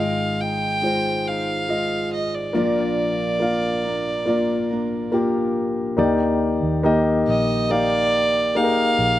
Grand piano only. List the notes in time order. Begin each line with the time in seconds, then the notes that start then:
Already playing: G#1 G#2 G#3
0.00 F4 D#5
0.82 G#3 F4 C5
1.68 G#3 F4 D#5
2.53 A#1 A#2 A#3 F4 D5
3.40 A#3 F4 F5
4.25 A#3 F4 D5
5.12 A#3 F4 G4
5.97 D#3 A#3 D#4 G4 D5
6.83 A#3 D#4 G4 D#5
7.70 A#3 D#4 G4 F5
8.55 A#3 D#4 G4 G#4
8.64 A#4